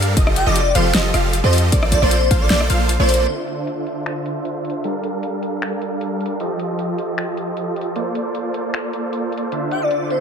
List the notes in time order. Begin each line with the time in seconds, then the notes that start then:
Already playing: G2 G3 D4 A4 A#4 F5
0.02 closed hi-hat
0.17 F1 F3 F4 G4 A4 D#5, kick, closed hi-hat
0.27 cross-stick
0.36 G5, closed hi-hat
0.46 F1 F3 F4 G4 A4 D5 D#5
0.56 closed hi-hat
0.75 F1 F3 F4 G4 A4 C5 F5, closed hi-hat
0.95 F1 F3 F4 G4 A4 D#5, snare, closed hi-hat
1.14 F1 F3 F4 G4 A4 F5, cross-stick, closed hi-hat
1.33 closed hi-hat
1.44 F2 F3 F4 G4 A4 C5 D#5
1.53 open hi-hat
1.58 closed hi-hat
1.72 A#1 A#3 F4 A4 C5 D5, kick, closed hi-hat
1.83 cross-stick
1.92 D5, kick, closed hi-hat
2.02 A#1 A#3 F4 A4 C5 D5
2.11 closed hi-hat
2.31 A#1 A#3 F4 A4 C5 F5, kick, closed hi-hat
2.41 D5
2.50 A#1 A#3 F4 A4 C5 D5, snare, closed hi-hat
2.61 cross-stick
2.70 A#1 A#3 F4 A4 C5 F5, closed hi-hat
2.89 closed hi-hat
3.00 A#1 A#3 F4 A4 C5 D5
3.09 open hi-hat
3.14 closed hi-hat
3.28 D3 D4 F4 C5 E5, closed hi-hat, crash
3.48 closed hi-hat
3.67 closed hi-hat
3.87 closed hi-hat
4.06 finger snap, closed hi-hat
4.26 closed hi-hat
4.45 closed hi-hat
4.65 closed hi-hat
4.70 closed hi-hat
4.84 G3 D4 A4 A#4 F5, closed hi-hat
5.04 closed hi-hat
5.23 closed hi-hat
5.43 closed hi-hat
5.62 finger snap, closed hi-hat
5.82 closed hi-hat
6.01 closed hi-hat
6.21 closed hi-hat
6.26 closed hi-hat
6.40 F3 F4 G4 A4 D#5, closed hi-hat
6.59 closed hi-hat
6.79 closed hi-hat
6.98 closed hi-hat
7.18 finger snap, closed hi-hat
7.37 closed hi-hat
7.57 closed hi-hat
7.76 closed hi-hat
7.81 closed hi-hat
7.96 A#3 F4 A4 C5 D5, closed hi-hat
8.15 closed hi-hat
8.35 closed hi-hat
8.54 closed hi-hat
8.74 finger snap, closed hi-hat
8.93 closed hi-hat
9.13 closed hi-hat
9.32 closed hi-hat
9.38 closed hi-hat
9.52 D3 D4 F4 C5 E5, closed hi-hat
9.71 G5, closed hi-hat
9.82 D5
9.91 closed hi-hat
10.10 C5, closed hi-hat